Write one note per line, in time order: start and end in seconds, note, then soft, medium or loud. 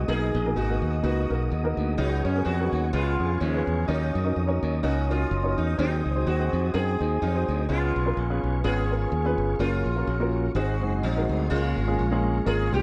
0.00 3.84 G#4 medium
0.00 2.89 D#5 medium
0.00 1.94 D#6 medium
0.08 0.31 B1 loud
0.08 0.78 B2 medium
0.08 0.35 A#3 medium
0.08 0.35 B3 medium
0.08 0.55 D#4 medium
0.08 0.35 D#4 medium
0.08 0.35 F#4 medium
0.08 0.57 G#4 loud
0.08 0.35 A#4 medium
0.08 1.96 A#5 medium
0.35 0.53 A#1 loud
0.45 0.60 A#3 medium
0.45 0.60 B3 medium
0.45 0.61 D#4 medium
0.45 0.61 F#4 medium
0.45 0.61 A#4 medium
0.56 0.78 G#1 medium
0.56 1.02 A#3 medium
0.56 1.02 D#4 medium
0.56 1.03 F#4 medium
0.69 0.93 A#3 medium
0.69 0.93 B3 medium
0.69 0.93 D#4 medium
0.69 0.93 F#4 medium
0.69 0.93 A#4 medium
0.82 1.00 D#2 medium
1.03 1.26 C#2 loud
1.03 1.21 A#3 medium
1.03 1.94 A#3 medium
1.03 1.21 B3 medium
1.03 1.21 D#4 medium
1.03 1.94 D#4 medium
1.03 1.21 F#4 medium
1.03 1.74 F#4 loud
1.03 1.21 B4 medium
1.29 1.48 B1 medium
1.29 1.51 A#3 medium
1.29 1.51 B3 medium
1.29 1.51 D#4 medium
1.29 1.51 F#4 medium
1.29 1.51 A#4 medium
1.52 1.74 D#2 medium
1.64 1.88 A#3 medium
1.64 1.88 B3 medium
1.64 1.88 D#4 medium
1.64 1.88 F#4 medium
1.64 1.88 A#4 medium
1.77 1.95 D2 medium
1.97 2.21 C#2 loud
1.97 2.68 C#3 medium
1.97 2.89 F#3 medium
1.97 2.25 B3 medium
1.97 2.44 B3 medium
1.97 2.25 C#4 medium
1.97 2.24 D#4 loud
1.97 2.25 F#4 medium
1.97 2.25 G#4 medium
1.97 2.25 B4 medium
1.97 2.92 G#5 medium
1.97 2.92 C#6 medium
2.25 2.43 F#2 medium
2.25 2.44 C#4 medium
2.35 2.50 B3 medium
2.35 2.50 C#4 medium
2.35 2.50 F#4 medium
2.35 2.51 G#4 medium
2.35 2.51 A#4 medium
2.45 2.68 F2 loud
2.45 2.90 B3 medium
2.45 2.93 F#4 loud
2.59 2.83 B3 medium
2.59 2.83 C#4 medium
2.59 2.83 F#4 medium
2.59 2.83 G#4 medium
2.59 2.83 A#4 medium
2.73 2.90 D#2 medium
2.93 3.16 C#2 loud
2.93 3.63 C#3 medium
2.93 3.40 G#3 medium
2.93 3.11 B3 medium
2.93 3.84 B3 medium
2.93 3.11 C#4 medium
2.93 3.40 F4 loud
2.93 3.11 F4 medium
2.93 3.11 G#4 medium
2.93 3.12 B4 medium
2.93 3.87 F5 medium
2.93 3.87 G#5 medium
2.93 3.87 C#6 medium
3.19 3.38 F2 medium
3.19 3.41 B3 medium
3.19 3.41 C#4 medium
3.19 3.41 F4 medium
3.19 3.41 G#4 medium
3.19 3.41 B4 medium
3.40 3.63 D#2 loud
3.40 3.85 F3 medium
3.40 3.85 G#3 medium
3.40 3.85 C#4 medium
3.53 3.78 B3 medium
3.53 3.78 C#4 medium
3.53 3.78 F4 medium
3.53 3.78 G#4 medium
3.53 3.78 B4 medium
3.67 3.85 E2 medium
3.87 4.11 D#2 loud
3.87 4.58 D#3 medium
3.87 4.79 F#3 medium
3.87 4.79 A#3 medium
3.87 4.14 C#4 medium
3.87 4.15 D#4 medium
3.87 4.58 D#4 medium
3.87 4.15 F#4 medium
3.87 4.15 A#4 medium
3.87 5.76 C#5 medium
3.87 4.15 C#5 medium
3.87 7.64 D#5 medium
3.87 5.76 A#5 medium
3.87 7.64 D#6 medium
4.15 4.33 F#2 medium
4.24 4.40 C#4 medium
4.24 4.40 D#4 medium
4.24 4.40 F#4 medium
4.24 4.40 A#4 medium
4.24 4.40 D#5 medium
4.36 4.58 F2 medium
4.47 4.72 C#4 medium
4.47 4.72 D#4 medium
4.47 4.73 F#4 medium
4.47 4.73 A#4 medium
4.47 4.73 C#5 loud
4.63 4.80 D#2 medium
4.82 5.24 C#2 medium
4.82 5.09 A#3 medium
4.82 5.00 C#4 medium
4.82 5.09 C#4 medium
4.82 5.01 D#4 medium
4.82 5.01 F#4 medium
4.82 5.11 F#4 medium
4.82 5.01 A#4 medium
4.82 5.01 D#5 medium
5.09 5.75 A#3 medium
5.09 5.31 C#4 medium
5.09 5.75 C#4 medium
5.09 5.31 D#4 medium
5.09 5.57 F4 medium
5.09 5.31 F#4 medium
5.09 5.31 A#4 medium
5.09 5.31 C#5 medium
5.31 5.53 F#1 loud
5.43 5.68 C#4 medium
5.43 5.68 D#4 medium
5.43 5.68 F#4 medium
5.43 5.68 A#4 medium
5.43 5.68 C#5 medium
5.58 5.76 E2 medium
5.58 5.78 D#4 medium
5.77 6.01 D#2 loud
5.77 6.48 D#3 medium
5.77 6.70 F#3 medium
5.77 6.05 C4 medium
5.77 6.25 C4 medium
5.77 6.05 D#4 medium
5.77 6.27 D#4 loud
5.77 6.05 F#4 medium
5.77 6.05 G#4 medium
5.77 7.66 C5 medium
5.77 6.05 C5 medium
5.77 9.55 G#5 medium
6.06 6.23 C#2 medium
6.15 6.30 C4 medium
6.15 6.30 D#4 medium
6.15 6.30 F#4 medium
6.15 6.31 G#4 medium
6.15 6.31 C5 medium
6.27 6.49 D#2 medium
6.27 6.73 C4 medium
6.27 6.73 F#4 loud
6.38 6.63 C4 medium
6.38 6.63 D#4 medium
6.38 6.63 F#4 medium
6.38 6.63 G#4 medium
6.38 6.63 C5 medium
6.53 6.71 F2 medium
6.73 6.96 F#2 medium
6.73 6.91 C4 medium
6.73 7.21 C4 medium
6.73 6.91 D#4 medium
6.73 6.91 F#4 medium
6.73 7.22 G#4 loud
6.73 6.92 G#4 medium
6.73 6.92 A#4 medium
6.99 7.18 D#2 medium
6.99 7.21 C4 medium
6.99 7.21 D#4 medium
6.99 7.22 F#4 medium
6.99 7.22 G#4 medium
6.99 7.22 C5 medium
7.22 7.44 F2 medium
7.22 7.66 F#3 medium
7.22 7.66 C4 medium
7.22 7.68 D#4 medium
7.34 7.58 C4 medium
7.34 7.58 D#4 medium
7.34 7.59 F#4 medium
7.34 7.59 G#4 medium
7.34 7.59 C5 medium
7.48 7.66 D2 medium
7.69 7.92 C#2 loud
7.69 8.39 C#3 medium
7.69 8.60 G#3 medium
7.69 7.95 B3 medium
7.69 8.60 B3 medium
7.69 7.95 C#4 medium
7.69 8.39 F4 medium
7.69 7.96 F4 medium
7.69 7.96 G#4 medium
7.69 9.58 B4 medium
7.69 7.96 B4 medium
7.69 10.52 F5 medium
7.69 10.52 C#6 medium
7.96 8.14 B1 medium
8.05 8.21 B3 medium
8.05 8.21 C#4 medium
8.05 8.21 F4 medium
8.05 8.21 G#4 medium
8.05 8.21 A#4 medium
8.17 8.39 A#1 medium
8.30 8.54 B3 medium
8.30 8.54 C#4 medium
8.30 8.54 F4 medium
8.30 8.54 G#4 medium
8.30 8.54 B4 loud
8.44 8.61 B1 medium
8.64 9.05 G#1 loud
8.64 8.82 B3 medium
8.64 9.56 B3 medium
8.64 8.82 C#4 medium
8.64 8.82 F4 medium
8.64 9.56 F4 medium
8.64 9.60 G#4 loud
8.64 8.82 G#4 medium
8.64 8.82 B4 loud
8.90 9.12 B3 medium
8.90 9.12 C#4 medium
8.90 9.12 F4 medium
8.90 9.12 G#4 medium
8.90 9.12 A#4 medium
9.12 9.34 D#2 loud
9.25 9.49 B3 medium
9.25 9.49 C#4 medium
9.25 9.49 F4 medium
9.25 9.49 G#4 medium
9.25 9.50 B4 loud
9.38 9.56 G1 medium
9.59 9.82 F#1 medium
9.59 9.86 A#3 medium
9.59 10.51 A#3 medium
9.59 9.86 C#4 medium
9.59 10.51 C#4 medium
9.59 9.86 F4 medium
9.59 10.56 F4 loud
9.59 9.86 F#4 medium
9.59 10.54 A#4 medium
9.59 9.87 A#4 medium
9.86 10.04 A#1 medium
9.96 10.11 A#3 medium
9.96 10.12 C#4 medium
9.96 10.12 F4 medium
9.96 10.12 F#4 medium
9.96 10.12 A#4 medium
10.07 10.48 A#1 medium
10.20 10.44 A#3 medium
10.20 10.44 C#4 medium
10.20 10.44 F4 medium
10.20 10.45 F#4 medium
10.20 10.45 A#4 medium
10.55 10.82 G#1 loud
10.55 11.25 G#2 medium
10.55 10.73 G#3 medium
10.55 10.73 C4 medium
10.55 11.02 C4 medium
10.55 10.73 D#4 medium
10.55 11.02 D#4 medium
10.55 10.73 F#4 medium
10.55 11.26 F#4 loud
10.55 10.73 G#4 medium
10.55 11.50 G#4 medium
10.55 11.50 D#5 medium
10.55 11.50 C6 medium
10.81 11.00 F#1 medium
10.81 11.03 G#3 medium
10.81 11.03 C4 medium
10.81 11.03 D#4 medium
10.81 11.03 F#4 medium
10.81 11.04 G#4 medium
11.03 11.25 A#1 medium
11.03 11.48 F#3 medium
11.03 11.48 C4 medium
11.03 11.47 D#4 medium
11.16 11.40 G#3 medium
11.16 11.40 C4 medium
11.16 11.40 D#4 medium
11.16 11.40 F#4 medium
11.16 11.40 A#4 medium
11.29 11.47 D2 medium
11.50 11.73 C#2 loud
11.50 12.21 C#3 medium
11.50 11.77 G#3 medium
11.50 12.82 G#3 medium
11.50 12.42 G#3 medium
11.50 12.42 A#3 medium
11.50 11.77 A#3 medium
11.50 11.77 C#4 medium
11.50 12.20 F4 loud
11.50 11.77 F4 medium
11.50 11.78 G#4 medium
11.50 12.82 F5 medium
11.50 12.82 A#5 medium
11.50 12.82 C#6 medium
11.77 11.95 G#1 medium
11.87 12.02 G#3 medium
11.87 12.03 A#3 medium
11.87 12.03 C#4 medium
11.87 12.03 F4 medium
11.87 12.03 G#4 medium
11.99 12.39 A#1 medium
12.11 12.35 G#3 medium
12.11 12.35 A#3 medium
12.11 12.36 C#4 medium
12.11 12.36 F4 medium
12.11 12.36 G#4 loud
12.46 12.69 G#1 loud
12.46 12.63 G#3 medium
12.46 12.63 A#3 medium
12.46 12.64 C#4 medium
12.46 12.82 F4 medium
12.46 12.64 F4 medium
12.46 12.73 G#4 loud
12.46 12.64 A#4 loud
12.72 12.82 C2 medium
12.72 12.82 G#3 medium
12.72 12.82 A#3 medium
12.72 12.82 C#4 medium
12.72 12.82 F4 medium
12.72 12.82 G4 medium
12.72 12.82 G4 loud